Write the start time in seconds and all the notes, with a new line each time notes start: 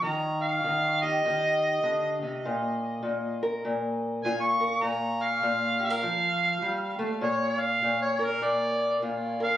0.02 D#3 A#5
0.43 F5
0.64 D#3
1.03 G4 D#5
1.25 D#3
1.83 D3
2.22 C3
2.45 A#2
3.03 A#2
3.43 A#4
3.65 A#2
4.24 A#2 F4 G#5
4.41 C#6
4.60 A#4
4.82 A#2 A#5
5.23 F5
5.43 A#2
5.79 G4
5.85 F5
5.90 A#4
6.03 F3
6.62 G3
6.99 A3
7.21 A#2 C#5
7.60 F5
7.82 A#2
8.02 C#5
8.19 A#4
8.25 A#4
8.42 A#2 D5
9.02 A#2 F4
9.40 A#4 F5